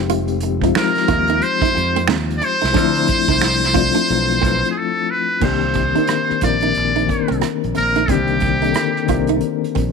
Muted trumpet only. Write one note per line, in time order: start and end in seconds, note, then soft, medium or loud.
0.76 1.44 A#4 medium
1.43 2.09 C5 loud
2.38 2.46 D5 medium
2.45 4.70 C5 loud
4.71 4.79 G#4 medium
4.78 5.12 A4 medium
5.11 5.45 B4 medium
5.44 6.43 C5 medium
6.44 7.39 D5 medium
7.77 8.12 A#4 medium
8.10 9.43 G4 medium